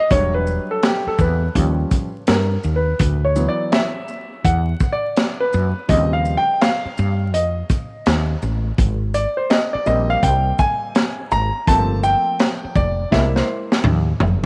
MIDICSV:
0, 0, Header, 1, 5, 480
1, 0, Start_track
1, 0, Tempo, 722892
1, 71, Time_signature, 4, 2, 24, 8
1, 9599, End_track
2, 0, Start_track
2, 0, Title_t, "Grand piano"
2, 0, Program_c, 0, 0
2, 0, Note_on_c, 0, 75, 96
2, 66, Note_off_c, 0, 75, 0
2, 69, Note_on_c, 0, 54, 57
2, 74, Note_on_c, 0, 55, 53
2, 76, Note_on_c, 0, 73, 102
2, 77, Note_on_c, 0, 62, 65
2, 218, Note_off_c, 0, 73, 0
2, 228, Note_on_c, 0, 71, 80
2, 451, Note_off_c, 0, 71, 0
2, 471, Note_on_c, 0, 69, 84
2, 553, Note_on_c, 0, 67, 80
2, 556, Note_off_c, 0, 69, 0
2, 712, Note_off_c, 0, 67, 0
2, 714, Note_on_c, 0, 69, 81
2, 798, Note_off_c, 0, 69, 0
2, 802, Note_on_c, 0, 71, 71
2, 1004, Note_off_c, 0, 54, 0
2, 1006, Note_off_c, 0, 55, 0
2, 1008, Note_off_c, 0, 62, 0
2, 1020, Note_off_c, 0, 71, 0
2, 1031, Note_on_c, 0, 53, 52
2, 1035, Note_on_c, 0, 55, 47
2, 1038, Note_on_c, 0, 61, 56
2, 1377, Note_off_c, 0, 53, 0
2, 1379, Note_off_c, 0, 55, 0
2, 1381, Note_off_c, 0, 61, 0
2, 1515, Note_on_c, 0, 70, 78
2, 1833, Note_on_c, 0, 71, 77
2, 1842, Note_off_c, 0, 70, 0
2, 2155, Note_on_c, 0, 73, 78
2, 2161, Note_off_c, 0, 71, 0
2, 2228, Note_on_c, 0, 52, 58
2, 2232, Note_on_c, 0, 54, 55
2, 2237, Note_on_c, 0, 59, 66
2, 2314, Note_on_c, 0, 74, 84
2, 2318, Note_off_c, 0, 73, 0
2, 2471, Note_on_c, 0, 76, 93
2, 2477, Note_off_c, 0, 74, 0
2, 2575, Note_off_c, 0, 52, 0
2, 2578, Note_off_c, 0, 54, 0
2, 2580, Note_off_c, 0, 59, 0
2, 2954, Note_on_c, 0, 78, 90
2, 2965, Note_off_c, 0, 76, 0
2, 3270, Note_on_c, 0, 74, 90
2, 3282, Note_off_c, 0, 78, 0
2, 3588, Note_on_c, 0, 71, 96
2, 3600, Note_off_c, 0, 74, 0
2, 3906, Note_on_c, 0, 49, 60
2, 3909, Note_on_c, 0, 53, 54
2, 3912, Note_on_c, 0, 55, 55
2, 3912, Note_on_c, 0, 75, 104
2, 3914, Note_on_c, 0, 60, 67
2, 3919, Note_off_c, 0, 71, 0
2, 4071, Note_on_c, 0, 77, 88
2, 4076, Note_off_c, 0, 75, 0
2, 4233, Note_on_c, 0, 79, 105
2, 4236, Note_off_c, 0, 77, 0
2, 4254, Note_off_c, 0, 49, 0
2, 4256, Note_off_c, 0, 53, 0
2, 4258, Note_off_c, 0, 55, 0
2, 4259, Note_off_c, 0, 60, 0
2, 4392, Note_on_c, 0, 77, 103
2, 4397, Note_off_c, 0, 79, 0
2, 4845, Note_off_c, 0, 77, 0
2, 4872, Note_on_c, 0, 75, 80
2, 5565, Note_off_c, 0, 75, 0
2, 6071, Note_on_c, 0, 74, 85
2, 6222, Note_on_c, 0, 72, 73
2, 6231, Note_off_c, 0, 74, 0
2, 6303, Note_off_c, 0, 72, 0
2, 6309, Note_on_c, 0, 75, 86
2, 6462, Note_on_c, 0, 74, 84
2, 6470, Note_off_c, 0, 75, 0
2, 6546, Note_on_c, 0, 55, 61
2, 6550, Note_on_c, 0, 75, 95
2, 6551, Note_off_c, 0, 74, 0
2, 6551, Note_on_c, 0, 58, 54
2, 6555, Note_on_c, 0, 60, 62
2, 6707, Note_on_c, 0, 77, 100
2, 6710, Note_off_c, 0, 75, 0
2, 6785, Note_off_c, 0, 77, 0
2, 6793, Note_on_c, 0, 79, 95
2, 7033, Note_on_c, 0, 80, 105
2, 7039, Note_off_c, 0, 79, 0
2, 7242, Note_off_c, 0, 55, 0
2, 7245, Note_off_c, 0, 58, 0
2, 7246, Note_off_c, 0, 60, 0
2, 7514, Note_on_c, 0, 82, 103
2, 7526, Note_off_c, 0, 80, 0
2, 7751, Note_on_c, 0, 53, 61
2, 7754, Note_on_c, 0, 57, 57
2, 7756, Note_on_c, 0, 58, 55
2, 7756, Note_on_c, 0, 81, 118
2, 7758, Note_on_c, 0, 60, 72
2, 7760, Note_off_c, 0, 82, 0
2, 7977, Note_off_c, 0, 81, 0
2, 7991, Note_on_c, 0, 79, 111
2, 8445, Note_off_c, 0, 53, 0
2, 8446, Note_off_c, 0, 57, 0
2, 8447, Note_off_c, 0, 58, 0
2, 8448, Note_off_c, 0, 60, 0
2, 8472, Note_on_c, 0, 74, 89
2, 8485, Note_off_c, 0, 79, 0
2, 8695, Note_off_c, 0, 74, 0
2, 8706, Note_on_c, 0, 64, 55
2, 8711, Note_on_c, 0, 56, 51
2, 8713, Note_on_c, 0, 58, 61
2, 8713, Note_on_c, 0, 76, 82
2, 8870, Note_on_c, 0, 72, 72
2, 8872, Note_off_c, 0, 76, 0
2, 9092, Note_off_c, 0, 72, 0
2, 9402, Note_off_c, 0, 64, 0
2, 9404, Note_off_c, 0, 56, 0
2, 9405, Note_off_c, 0, 58, 0
2, 9599, End_track
3, 0, Start_track
3, 0, Title_t, "Fretless electric bass"
3, 0, Program_c, 1, 35
3, 73, Note_on_c, 1, 28, 108
3, 379, Note_off_c, 1, 28, 0
3, 791, Note_on_c, 1, 40, 95
3, 977, Note_off_c, 1, 40, 0
3, 1032, Note_on_c, 1, 39, 110
3, 1218, Note_off_c, 1, 39, 0
3, 1517, Note_on_c, 1, 43, 96
3, 1701, Note_off_c, 1, 43, 0
3, 1755, Note_on_c, 1, 39, 74
3, 1940, Note_off_c, 1, 39, 0
3, 1993, Note_on_c, 1, 38, 105
3, 2299, Note_off_c, 1, 38, 0
3, 2954, Note_on_c, 1, 40, 98
3, 3140, Note_off_c, 1, 40, 0
3, 3679, Note_on_c, 1, 42, 89
3, 3796, Note_off_c, 1, 42, 0
3, 3914, Note_on_c, 1, 39, 105
3, 4220, Note_off_c, 1, 39, 0
3, 4640, Note_on_c, 1, 43, 91
3, 4873, Note_off_c, 1, 43, 0
3, 4873, Note_on_c, 1, 41, 101
3, 5059, Note_off_c, 1, 41, 0
3, 5358, Note_on_c, 1, 39, 92
3, 5542, Note_off_c, 1, 39, 0
3, 5594, Note_on_c, 1, 33, 93
3, 5780, Note_off_c, 1, 33, 0
3, 5834, Note_on_c, 1, 32, 105
3, 6140, Note_off_c, 1, 32, 0
3, 6554, Note_on_c, 1, 34, 92
3, 6740, Note_off_c, 1, 34, 0
3, 6792, Note_on_c, 1, 36, 96
3, 6978, Note_off_c, 1, 36, 0
3, 7515, Note_on_c, 1, 32, 99
3, 7634, Note_off_c, 1, 32, 0
3, 7753, Note_on_c, 1, 31, 103
3, 8059, Note_off_c, 1, 31, 0
3, 8470, Note_on_c, 1, 29, 90
3, 8657, Note_off_c, 1, 29, 0
3, 8713, Note_on_c, 1, 36, 112
3, 8899, Note_off_c, 1, 36, 0
3, 9193, Note_on_c, 1, 39, 101
3, 9379, Note_off_c, 1, 39, 0
3, 9436, Note_on_c, 1, 30, 94
3, 9599, Note_off_c, 1, 30, 0
3, 9599, End_track
4, 0, Start_track
4, 0, Title_t, "Muted fretless electric bass strokes"
4, 709, Note_on_c, 9, 29, 46
4, 775, Note_off_c, 9, 29, 0
4, 4551, Note_on_c, 9, 29, 47
4, 4617, Note_off_c, 9, 29, 0
4, 6473, Note_on_c, 9, 29, 48
4, 6539, Note_off_c, 9, 29, 0
4, 8395, Note_on_c, 9, 29, 47
4, 8462, Note_off_c, 9, 29, 0
4, 9599, End_track
5, 0, Start_track
5, 0, Title_t, "Drums"
5, 70, Note_on_c, 9, 42, 88
5, 71, Note_on_c, 9, 36, 108
5, 136, Note_off_c, 9, 42, 0
5, 138, Note_off_c, 9, 36, 0
5, 311, Note_on_c, 9, 82, 57
5, 377, Note_off_c, 9, 82, 0
5, 549, Note_on_c, 9, 42, 72
5, 554, Note_on_c, 9, 38, 124
5, 616, Note_off_c, 9, 42, 0
5, 620, Note_off_c, 9, 38, 0
5, 787, Note_on_c, 9, 82, 45
5, 788, Note_on_c, 9, 36, 92
5, 853, Note_off_c, 9, 82, 0
5, 855, Note_off_c, 9, 36, 0
5, 1031, Note_on_c, 9, 36, 70
5, 1031, Note_on_c, 9, 42, 75
5, 1098, Note_off_c, 9, 36, 0
5, 1098, Note_off_c, 9, 42, 0
5, 1269, Note_on_c, 9, 42, 58
5, 1269, Note_on_c, 9, 82, 58
5, 1271, Note_on_c, 9, 36, 99
5, 1336, Note_off_c, 9, 42, 0
5, 1336, Note_off_c, 9, 82, 0
5, 1337, Note_off_c, 9, 36, 0
5, 1507, Note_on_c, 9, 42, 69
5, 1513, Note_on_c, 9, 38, 100
5, 1574, Note_off_c, 9, 42, 0
5, 1579, Note_off_c, 9, 38, 0
5, 1750, Note_on_c, 9, 82, 55
5, 1816, Note_off_c, 9, 82, 0
5, 1988, Note_on_c, 9, 42, 88
5, 1991, Note_on_c, 9, 36, 110
5, 2054, Note_off_c, 9, 42, 0
5, 2057, Note_off_c, 9, 36, 0
5, 2229, Note_on_c, 9, 82, 61
5, 2296, Note_off_c, 9, 82, 0
5, 2471, Note_on_c, 9, 42, 71
5, 2475, Note_on_c, 9, 38, 113
5, 2537, Note_off_c, 9, 42, 0
5, 2542, Note_off_c, 9, 38, 0
5, 2710, Note_on_c, 9, 82, 48
5, 2776, Note_off_c, 9, 82, 0
5, 2952, Note_on_c, 9, 36, 77
5, 2953, Note_on_c, 9, 42, 79
5, 3018, Note_off_c, 9, 36, 0
5, 3019, Note_off_c, 9, 42, 0
5, 3188, Note_on_c, 9, 82, 62
5, 3190, Note_on_c, 9, 36, 92
5, 3254, Note_off_c, 9, 82, 0
5, 3257, Note_off_c, 9, 36, 0
5, 3429, Note_on_c, 9, 42, 76
5, 3435, Note_on_c, 9, 38, 111
5, 3496, Note_off_c, 9, 42, 0
5, 3502, Note_off_c, 9, 38, 0
5, 3671, Note_on_c, 9, 82, 53
5, 3737, Note_off_c, 9, 82, 0
5, 3910, Note_on_c, 9, 42, 84
5, 3912, Note_on_c, 9, 36, 120
5, 3976, Note_off_c, 9, 42, 0
5, 3978, Note_off_c, 9, 36, 0
5, 4152, Note_on_c, 9, 82, 59
5, 4218, Note_off_c, 9, 82, 0
5, 4392, Note_on_c, 9, 42, 74
5, 4397, Note_on_c, 9, 38, 116
5, 4459, Note_off_c, 9, 42, 0
5, 4463, Note_off_c, 9, 38, 0
5, 4632, Note_on_c, 9, 82, 51
5, 4698, Note_off_c, 9, 82, 0
5, 4874, Note_on_c, 9, 42, 82
5, 4940, Note_off_c, 9, 42, 0
5, 5111, Note_on_c, 9, 42, 62
5, 5111, Note_on_c, 9, 82, 61
5, 5112, Note_on_c, 9, 36, 100
5, 5177, Note_off_c, 9, 42, 0
5, 5177, Note_off_c, 9, 82, 0
5, 5178, Note_off_c, 9, 36, 0
5, 5352, Note_on_c, 9, 42, 76
5, 5357, Note_on_c, 9, 38, 110
5, 5418, Note_off_c, 9, 42, 0
5, 5424, Note_off_c, 9, 38, 0
5, 5593, Note_on_c, 9, 82, 55
5, 5659, Note_off_c, 9, 82, 0
5, 5831, Note_on_c, 9, 42, 83
5, 5832, Note_on_c, 9, 36, 111
5, 5898, Note_off_c, 9, 36, 0
5, 5898, Note_off_c, 9, 42, 0
5, 6071, Note_on_c, 9, 42, 62
5, 6071, Note_on_c, 9, 82, 58
5, 6137, Note_off_c, 9, 42, 0
5, 6137, Note_off_c, 9, 82, 0
5, 6310, Note_on_c, 9, 42, 76
5, 6314, Note_on_c, 9, 38, 121
5, 6376, Note_off_c, 9, 42, 0
5, 6381, Note_off_c, 9, 38, 0
5, 6548, Note_on_c, 9, 82, 50
5, 6614, Note_off_c, 9, 82, 0
5, 6791, Note_on_c, 9, 36, 71
5, 6791, Note_on_c, 9, 42, 80
5, 6858, Note_off_c, 9, 36, 0
5, 6858, Note_off_c, 9, 42, 0
5, 7030, Note_on_c, 9, 82, 62
5, 7031, Note_on_c, 9, 36, 94
5, 7096, Note_off_c, 9, 82, 0
5, 7098, Note_off_c, 9, 36, 0
5, 7270, Note_on_c, 9, 42, 78
5, 7276, Note_on_c, 9, 38, 103
5, 7337, Note_off_c, 9, 42, 0
5, 7343, Note_off_c, 9, 38, 0
5, 7512, Note_on_c, 9, 82, 55
5, 7579, Note_off_c, 9, 82, 0
5, 7752, Note_on_c, 9, 36, 118
5, 7752, Note_on_c, 9, 42, 90
5, 7818, Note_off_c, 9, 36, 0
5, 7819, Note_off_c, 9, 42, 0
5, 7991, Note_on_c, 9, 82, 59
5, 8057, Note_off_c, 9, 82, 0
5, 8230, Note_on_c, 9, 42, 75
5, 8234, Note_on_c, 9, 38, 127
5, 8296, Note_off_c, 9, 42, 0
5, 8301, Note_off_c, 9, 38, 0
5, 8469, Note_on_c, 9, 36, 92
5, 8469, Note_on_c, 9, 82, 49
5, 8536, Note_off_c, 9, 36, 0
5, 8536, Note_off_c, 9, 82, 0
5, 8713, Note_on_c, 9, 36, 80
5, 8715, Note_on_c, 9, 38, 58
5, 8779, Note_off_c, 9, 36, 0
5, 8781, Note_off_c, 9, 38, 0
5, 8872, Note_on_c, 9, 38, 50
5, 8938, Note_off_c, 9, 38, 0
5, 9109, Note_on_c, 9, 38, 68
5, 9176, Note_off_c, 9, 38, 0
5, 9189, Note_on_c, 9, 45, 88
5, 9255, Note_off_c, 9, 45, 0
5, 9430, Note_on_c, 9, 43, 100
5, 9496, Note_off_c, 9, 43, 0
5, 9599, End_track
0, 0, End_of_file